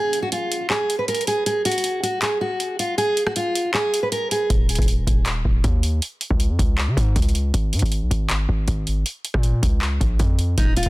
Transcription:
Already playing: steel-string acoustic guitar G#4
0.13 closed hi-hat
0.22 steel-string acoustic guitar F#4
0.32 steel-string acoustic guitar F4, closed hi-hat
0.52 closed hi-hat
0.70 steel-string acoustic guitar G#4, clap
0.90 closed hi-hat
0.99 steel-string acoustic guitar B4
1.08 steel-string acoustic guitar A#4, closed hi-hat
1.15 closed hi-hat
1.21 closed hi-hat
1.27 steel-string acoustic guitar G#4, closed hi-hat
1.46 steel-string acoustic guitar G#4, closed hi-hat
1.65 steel-string acoustic guitar F#4, closed hi-hat
1.72 closed hi-hat
1.78 closed hi-hat
1.84 closed hi-hat
2.03 steel-string acoustic guitar F#4, closed hi-hat
2.22 steel-string acoustic guitar G#4, clap, closed hi-hat
2.41 steel-string acoustic guitar F#4
2.60 closed hi-hat
2.79 steel-string acoustic guitar F4, closed hi-hat
2.98 steel-string acoustic guitar G#4, closed hi-hat
3.17 closed hi-hat
3.26 steel-string acoustic guitar F#4, cross-stick
3.36 steel-string acoustic guitar F4, closed hi-hat
3.55 closed hi-hat
3.74 steel-string acoustic guitar G#4, clap
3.94 closed hi-hat
4.03 steel-string acoustic guitar B4
4.12 steel-string acoustic guitar A#4, closed hi-hat
4.31 steel-string acoustic guitar G#4, closed hi-hat
4.50 808-style bass D#1, kick, closed hi-hat
4.69 closed hi-hat
4.75 808-style bass D#1, kick, closed hi-hat
4.82 closed hi-hat
4.88 closed hi-hat
5.07 808-style bass D#1, kick, closed hi-hat
5.26 clap, closed hi-hat
5.45 808-style bass D#1, kick
5.64 808-style bass D#2, kick, closed hi-hat
5.83 closed hi-hat
6.02 closed hi-hat
6.21 closed hi-hat
6.30 808-style bass C#2, kick
6.40 closed hi-hat
6.49 808-style bass F2
6.59 808-style bass C#2, kick, closed hi-hat
6.78 clap
6.87 808-style bass C#3
6.97 808-style bass G#2, kick, closed hi-hat
7.16 808-style bass C#2, kick, closed hi-hat
7.22 closed hi-hat
7.29 closed hi-hat
7.35 closed hi-hat
7.54 808-style bass G#1, kick, closed hi-hat
7.73 808-style bass G#2, closed hi-hat
7.79 808-style bass G#1, kick, closed hi-hat
7.86 closed hi-hat
7.92 closed hi-hat
8.01 808-style bass B1
8.11 808-style bass G#1, kick, closed hi-hat
8.29 clap, closed hi-hat
8.49 808-style bass G#1, kick
8.68 808-style bass G#1, kick, closed hi-hat
8.87 closed hi-hat
9.06 closed hi-hat
9.25 closed hi-hat
9.34 808-style bass A#2, kick, cross-stick
9.43 closed hi-hat
9.63 808-style bass C#2, kick, closed hi-hat
9.82 clap
10.01 808-style bass A#1, kick, closed hi-hat
10.19 808-style bass F2, kick, closed hi-hat
10.39 closed hi-hat
10.58 808-style bass D#1, steel-string acoustic guitar D#4, kick, closed hi-hat
10.77 steel-string acoustic guitar F4, closed hi-hat
10.83 808-style bass D#1, kick, closed hi-hat

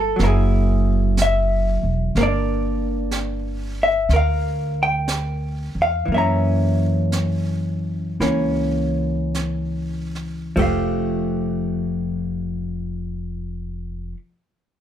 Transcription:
Already playing: upright bass G1, hollow-body jazz guitar G3 A#3 F4 A4
0.16 upright bass F#1, hollow-body jazz guitar F#3 A#3, brush sweep, snare
0.23 hollow-body jazz guitar E4 G#4 A#4
1.17 brush sweep, snare, hi-hat pedal
1.22 hollow-body jazz guitar E5
1.83 upright bass E1
2.15 upright bass G1, hollow-body jazz guitar A#3, brush sweep, snare
2.21 hollow-body jazz guitar D4 A#4 D5
3.11 brush sweep, snare, hi-hat pedal
3.83 hollow-body jazz guitar E5
4.09 upright bass D2, brush sweep, snare
4.13 hollow-body jazz guitar A#4 F5
4.83 hollow-body jazz guitar G5
5.08 brush sweep, snare, hi-hat pedal
5.75 upright bass E2
5.82 hollow-body jazz guitar F5
6.05 upright bass F#2, hollow-body jazz guitar E3, brush sweep
6.12 hollow-body jazz guitar A#3 E5
6.16 hollow-body jazz guitar C#4 A#5
7.12 brush sweep, snare, hi-hat pedal
8.20 upright bass C#2, hollow-body jazz guitar E3 A#3 C#4, brush sweep, snare
9.35 brush sweep, snare, hi-hat pedal
10.15 snare
10.56 upright bass F1, hollow-body jazz guitar F3 A3 G4, kick, ride
10.62 hollow-body jazz guitar F5

